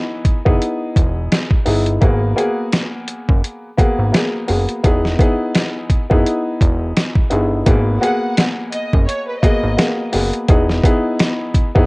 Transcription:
Already playing: B3 D#4 E4 G#4
0.25 kick, closed hi-hat
0.45 F#1 B3 D#4 E4 G#4, kick
0.62 closed hi-hat
0.96 E1, kick, closed hi-hat
1.32 snare, closed hi-hat
1.51 kick
1.65 G1 B3 D#4 E4 G#4, open hi-hat
1.86 closed hi-hat
2.01 G#1 A#3 B3 F#4 G#4, kick, closed hi-hat
2.36 A#3 B3 F#4 G#4, closed hi-hat
2.72 snare, closed hi-hat
3.07 closed hi-hat
3.29 F#1, kick
3.44 closed hi-hat
3.77 A#3 B3 F#4 G#4, kick, closed hi-hat
3.99 G#1
4.12 A#3 B3 F#4 G#4, snare, closed hi-hat
4.48 F#1 A#3 B3 F#4 G#4, open hi-hat
4.69 closed hi-hat
4.83 E1 B3 D#4 E4 G#4, kick, closed hi-hat
5.05 snare
5.19 B3 D#4 E4 G#4, kick, closed hi-hat
5.55 snare, closed hi-hat
5.90 kick, closed hi-hat
6.10 F#1 B3 D#4 E4 G#4, kick
6.26 closed hi-hat
6.61 E1, kick, closed hi-hat
6.96 snare, closed hi-hat
7.15 kick
7.30 G1 B3 D#4 E4 G#4, closed hi-hat
7.66 G#1 A#3 B3 F#4 G#4, kick, closed hi-hat
8.00 A#3 B3 F#4 G#4 F#5, closed hi-hat
8.37 snare, closed hi-hat
8.72 D#5, closed hi-hat
8.93 F#1, kick
9.06 C#5, closed hi-hat
9.28 B4
9.40 A#3 B3 F#4 D#5, kick, closed hi-hat
9.44 G#4
9.63 G#1
9.77 A#3 B3 F#4 G#4, snare, closed hi-hat
10.12 F#1 A#3 B3 F#4 G#4, open hi-hat
10.33 closed hi-hat
10.49 E1 B3 D#4 E4 G#4, kick, closed hi-hat
10.70 snare
10.84 B3 D#4 E4 G#4, kick, closed hi-hat
11.20 snare, closed hi-hat
11.55 kick, closed hi-hat
11.75 F#1 B3 D#4 E4 G#4, kick

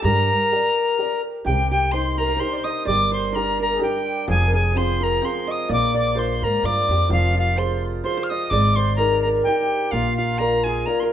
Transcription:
Already playing: G4 C5
0.02 G2 G3 A#4 A#5
0.52 G4 A#4 D5
0.98 G4 A#4 D5
1.45 C2 C3 G4 G5
1.71 G4 G5
1.92 D#4 G4 C5 C6
2.18 A#4 A#5
2.23 A#4
2.28 A#4
2.36 D#4 G4 C5 C6
2.41 C5
2.52 C5 D5
2.64 D#5 D#6
2.70 A#4 C5
2.85 G1 G3 D5 D6
3.12 C5 C6
3.32 D4 G4 A#4 A#5
3.59 A#4 A#5
3.65 A#4
3.70 A#4
3.74 G#4
3.79 D4 G4 A#4 G5
4.28 F1 F3 G#4 G#5
4.47 A#4
4.53 G#4 G#5
4.75 C4 F4 G#4 C5 C6
5.01 A#4 A#5
5.22 C4 F4 G#4 C5 C6
5.47 D#5 D#6
5.68 A#1 A#3 D5
5.73 D6
5.94 D5
5.99 D6
6.15 F4 A#4 C5 D5 C6
6.36 C5
6.42 G#2 A#4 A#5
6.63 G2 F4 A#4 D5 D6
6.89 F2 G4
7.09 F1 F3 F4 F5
7.18 F4
7.24 F4
7.35 F4
7.39 F5
7.56 F4 G#4 C5 C6
8.04 F4 G#4 C5 C6
8.10 C5
8.17 C5
8.23 F6
8.29 D#5 D#6
8.50 G#1 G#3 D5 D6
8.76 C5 C6
8.96 D#4 G#4 A#4 A#5
9.22 A#4 A#5
9.44 D#4 G4 A#4 G5
9.91 A#1 A#3 F4 F5
10.17 F4 F5
10.38 F4 A#4 D5 A#5
10.64 G#4 G#5
10.86 F4 A#4 D5 A#5
11.00 A#4 C6

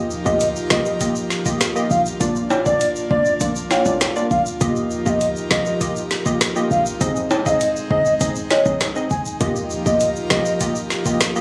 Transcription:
Already playing: F3 A#3 D#4 F4 G4 A#4 D#5
0.10 shaker
0.25 D2 A#3 F4 G4 D#5, kick, shaker
0.40 closed hi-hat, shaker
0.56 shaker
0.70 C2 A#3 F4 G4 D#5, cross-stick, snare
0.85 shaker
1.01 A#3 F4 G4 D#5, kick, closed hi-hat, shaker
1.16 shaker
1.30 snare, shaker
1.46 A#3 F4 G4 D#5, kick, shaker
1.61 cross-stick, snare, closed hi-hat, shaker
1.75 A#3 F4 G4 D#5, shaker
1.91 A#1 F5, shaker
2.06 shaker
2.20 A#1 A#3 D4 F4 D5, kick, closed hi-hat, shaker
2.36 shaker
2.50 high timbale, shaker
2.65 A#3 D4 F4 D5, kick, shaker
2.80 closed hi-hat, shaker
2.96 shaker
3.11 G#1 A#3 D4 F4 D5, kick
3.25 shaker
3.40 A#1 A#3 D4 F4 D5, kick, closed hi-hat, shaker
3.56 shaker
3.71 F5, snare, high timbale, shaker
3.85 C2 A#3 D4 F4 D5, kick, shaker
4.01 cross-stick, snare, closed hi-hat, high timbale, shaker
4.16 A#3 D4 F4 D5, shaker
4.31 A#1 F5, kick, shaker
4.46 shaker
4.61 D#2 F3 A#3 D#4 F4 G4 A#4 D#5, kick, closed hi-hat, shaker
4.76 shaker
4.91 shaker
5.06 D2 A#3 F4 G4 D#5 F5, kick, shaker
5.21 closed hi-hat, shaker
5.36 shaker
5.51 C2 A#3 F4 G4 D#5, cross-stick, snare
5.66 shaker
5.81 A#3 F4 G4 D#5, kick, closed hi-hat, shaker
5.96 shaker
6.11 snare, shaker
6.26 A#3 F4 G4 D#5, kick, shaker
6.41 cross-stick, snare, closed hi-hat, shaker
6.56 A#3 F4 G4 D#5, shaker
6.71 A#1 F5, shaker
6.86 shaker
7.01 G#1 G#3 C4 D#4 G#4 D#5, kick, closed hi-hat, shaker
7.16 shaker
7.31 high timbale, shaker
7.46 C4 D#4 G#4 D#5 F5, kick, shaker
7.61 closed hi-hat, shaker
7.76 shaker
7.90 G1 C4 D#4 G#4 D#5, kick
8.06 shaker
8.21 G#1 C4 D#4 G#4 D#5, kick, closed hi-hat, shaker
8.36 shaker
8.51 D#5, snare, high timbale, shaker
8.65 A#1 C4 D#4 G#4 D#5, kick, shaker
8.81 cross-stick, snare, closed hi-hat, high timbale, shaker
8.96 C4 D#4 G#4 D#5, shaker
9.10 G#1 G#5, kick, shaker
9.25 shaker
9.40 D#2 F3 A#3 F4 G4 A#4 D#5, kick, closed hi-hat, shaker
9.56 shaker
9.70 shaker
9.86 D2 A#3 F4 G4 D#5, kick, shaker
10.00 closed hi-hat, shaker
10.16 shaker
10.30 C2 A#3 F4 G4 D#5, cross-stick, snare
10.45 shaker
10.60 A#3 F4 G4 D#5, kick, closed hi-hat, shaker
10.76 shaker
10.90 snare, shaker
11.06 A#3 F4 G4 D#5, kick, shaker
11.21 cross-stick, snare, closed hi-hat, shaker
11.36 A#3 F4 G4 D#5, shaker

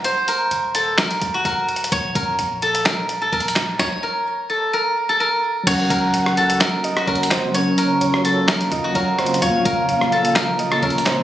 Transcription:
Already playing: D#1 F#4 A#4
0.04 C5, closed hi-hat
0.28 A#4, closed hi-hat
0.51 D#1, closed hi-hat
0.75 A4, closed hi-hat
0.98 A#4, snare, clap, closed hi-hat
1.11 closed hi-hat
1.22 D#1, kick, closed hi-hat
1.34 F#4
1.45 D#1 A#4, kick, closed hi-hat
1.69 closed hi-hat
1.76 closed hi-hat
1.84 closed hi-hat
1.92 A#1 C#5, kick, closed hi-hat
2.15 F2 A#4, kick, closed hi-hat
2.39 A#1, closed hi-hat
2.62 A4, closed hi-hat
2.75 closed hi-hat
2.86 A#4, snare, clap, closed hi-hat
3.09 closed hi-hat
3.22 A4
3.33 A#1 A#4, kick, closed hi-hat
3.40 closed hi-hat
3.48 closed hi-hat
3.56 snare, clap, closed hi-hat
3.79 C#5, kick, snare
4.03 A#4
4.50 A4
4.73 A#4
5.09 A4
5.20 A#4
5.64 F#1 C#3 F#3 A#3 C#4 F#4 C#5 F#5, kick, closed hi-hat, crash
5.70 A#4
5.90 C#2 A#4, kick, closed hi-hat
6.14 F#1, closed hi-hat
6.26 cross-stick
6.37 C#2 A4, closed hi-hat
6.50 closed hi-hat
6.55 F#1
6.61 A#4, snare, clap, closed hi-hat
6.84 D#5, closed hi-hat
6.97 F#4, cross-stick
7.07 F#1 A#4 C#5, kick, closed hi-hat
7.15 closed hi-hat
7.23 closed hi-hat
7.31 C5, snare, clap, closed hi-hat
7.51 F#3 C#4 F4 C#5, closed hi-hat
7.58 A#4
7.78 A#4, closed hi-hat
8.01 F#1, closed hi-hat
8.14 cross-stick
8.25 A4, closed hi-hat
8.48 A#4, snare, clap, closed hi-hat
8.61 closed hi-hat
8.72 F#1 D#5, kick, closed hi-hat
8.84 F#4
8.95 F#1 A#4 C#5, kick, closed hi-hat
9.19 C5, cross-stick, closed hi-hat
9.26 closed hi-hat
9.34 closed hi-hat
9.39 A#1 F3 A#3 F4 C#5 F5, kick, closed hi-hat
9.45 C#5
9.65 F2 A#4, kick, closed hi-hat
9.89 A#1, closed hi-hat
10.01 cross-stick
10.12 A4, closed hi-hat
10.25 closed hi-hat
10.36 A#4, snare, clap, closed hi-hat
10.59 D#5, closed hi-hat
10.71 A4, cross-stick
10.82 A#1 A#4 C#5, kick, closed hi-hat
10.90 closed hi-hat
10.98 closed hi-hat
11.06 C5, snare, clap, closed hi-hat

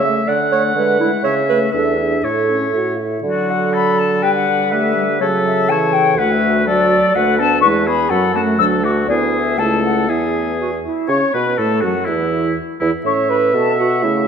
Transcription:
Already playing: C#3 E5
0.04 A3 E5
0.27 D3 D5 F#5
0.52 A3 C#5 D5
0.75 D3 G#3 B4 E5
1.00 G#3 E4 E5
1.24 C#3 C#5 E5
1.48 A3 B4 E5
1.72 E2 D4 A4 E5
1.99 D4 G#4 E5
2.24 A2 A4 C#5
2.48 C#4 E5
2.74 A2 F#4
2.98 E4 E5
3.23 D3 F#3 F#4 A4 D5
3.50 F#5
3.73 A4 B5
3.98 A5
4.22 G3 G4 B4 G5
4.34 F#5
4.71 A3 G4 B4 E5
4.96 G3
5.20 C#3 F#3 A4 C#5
5.44 E5
5.69 E3 C#5 A5
5.93 G5
6.17 D2 A3 F#4 B4 F#5
6.31 E5
6.66 F#3 F#4 A4 D5
7.15 D2 A3 F#4 B4 F#5
7.39 B3 D4 A4 A5
7.61 E2 G#3 B4 C#6
7.65 E4
7.87 B3 G#4 B5
8.09 F#2 F#3 C#4 A4 F#5
8.34 A3 F#4 A5
8.58 D2 F#3 D4 A4 E6
8.83 A3 F#4 D6
9.07 D2 B3 E4 G#4 D5
9.33 E5
9.58 C#2 A3 E4 A4 A5
9.84 F#5
10.08 E2 B3 E4 G#4 E5
10.60 F#4
10.83 E4 E5
11.08 C#3 C#4 C#5 C#6
11.33 B2 B3 B4 B5
11.57 A2 A3 A4 A5
11.80 F#2 F#3 F#4 F#5
12.05 E2 E3 E4 E5
12.80 E2 E3 E4 E5
13.04 A2 C#4 C#5 E5 C#6
13.30 B4 B5
13.54 B2 B3 A4 A5
13.77 F#4 F#5
14.02 C#3 A3 E4 E5

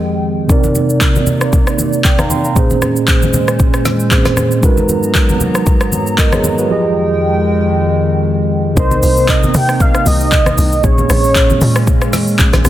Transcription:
Already playing: F2 D#3 F3 G#3 C4 G4 G#4 D#5 G5
0.47 C3 A#3 C4 D#4 A#4 D5, kick, low conga, shaker
0.52 D5
0.64 high conga, shaker
0.75 high conga, shaker
0.89 shaker
1.01 kick, clap, shaker
1.15 high conga, shaker
1.27 high conga, low conga, shaker
1.41 cross-stick, shaker
1.53 kick, low conga, shaker
1.67 cross-stick, shaker
1.78 high conga, shaker
1.93 shaker
2.05 D5 G5, kick, clap, shaker
2.18 F5 A#5, cross-stick, high conga, shaker
2.30 G5 C6, high conga, shaker
2.44 F5 A#5, shaker
2.54 A#2 G#3 A#3 C#4 G#4 C5, kick, low conga, shaker
2.59 C5
2.70 high conga, shaker
2.82 cross-stick, high conga, shaker
2.96 shaker
3.08 kick, clap, shaker
3.22 high conga, shaker
3.34 high conga, low conga, shaker
3.48 cross-stick, shaker
3.59 kick, low conga, shaker
3.74 cross-stick, shaker
3.85 snare, high conga, shaker
4.00 shaker
4.10 A#2 A#3 C4 G#4 C5, kick, clap, shaker
4.18 C#4
4.25 cross-stick, snare, high conga, shaker
4.37 cross-stick, high conga, shaker
4.51 shaker
4.61 G#2 F#3 G#3 B3 D#4 F#4 A#4 A#5, kick, low conga, shaker
4.65 B4
4.77 high conga, shaker
4.89 high conga, shaker
5.03 shaker
5.15 kick, clap, shaker
5.29 high conga, shaker
5.41 high conga, low conga, shaker
5.55 cross-stick, shaker
5.66 kick, low conga, shaker
5.81 cross-stick, shaker
5.92 high conga, shaker
6.07 shaker
6.18 A#4 D#5, kick, clap, shaker
6.32 G#4 C#5, cross-stick, high conga, shaker
6.44 high conga, shaker
6.58 F#4 B4, shaker
6.68 F2 D#3 F3 G#3 F4 G4 G#4 G5
6.72 D#5
8.75 C2 C3 A#3 C4 D#4 A#4 C5, kick, low conga, shaker
8.79 D#5
8.91 high conga, shaker
9.03 C2, open hi-hat, shaker
9.17 shaker
9.29 D#5, kick, clap, shaker
9.43 high conga, shaker
9.54 C3 G5, open hi-hat, high conga, low conga, shaker
9.69 cross-stick, shaker
9.80 F5, kick, low conga, shaker
9.95 cross-stick, shaker
10.06 C2 D#5, open hi-hat, high conga, shaker
10.20 shaker
10.32 kick, clap, low conga, shaker
10.46 cross-stick, high conga, shaker
10.58 C2, open hi-hat, high conga, shaker
10.72 shaker
10.82 A#1 A#2 G#3 A#3 C#4 G#4 C#5, kick, low conga, shaker
10.86 C#5
10.98 high conga, shaker
11.10 A#1, cross-stick, open hi-hat, shaker
11.24 shaker
11.36 kick, clap, shaker
11.50 high conga, shaker
11.61 A#2, open hi-hat, high conga, low conga, shaker
11.76 cross-stick, shaker
11.87 kick, low conga, shaker
12.02 cross-stick, shaker
12.13 snare, open hi-hat, high conga, shaker
12.27 shaker
12.39 kick, clap, low conga, shaker
12.53 A#1, cross-stick, snare, high conga, shaker
12.64 A#1 A#2 A#3 C#4 G#4 C5, cross-stick, open hi-hat, high conga, shaker

